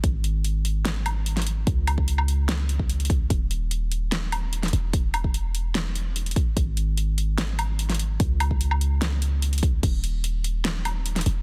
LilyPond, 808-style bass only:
\new Staff \with { instrumentName = "808-style bass" } { \clef bass \time 4/4 \key cis \dorian \tempo 4 = 147 gis,,1 | cis,1 | dis,,2.~ dis,,8 e,,8~ | e,,2.~ e,,8 r8 |
gis,,1 | cis,1 | dis,,2.~ dis,,8 e,,8 | }